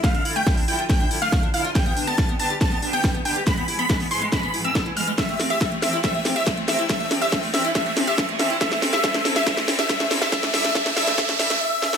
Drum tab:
HH |xxoxxooxxxoxxxox|xxoxxxoxxxoxxxox|xxoxxooxxxoxxxox|xxoxxxoxxxoxxxox|
SD |o---o---o---o---|o---o---o---o---|o---o---o---o---|o-o-o-o-o-o-o-o-|
BD |o---o---o---o---|o---o---o---o---|o---o---o---o---|o---o---o---o---|

HH |xxoxxooxxxoxxxox|xxoxxxoxxxoxxxo-|xxoxxooxxxox----|
SD |o-o-o-o-o-o-o-o-|oooooooooooooooo|oooooooooooo--oo|
BD |o---o---o---o---|o---o---o---o---|o---o---o-------|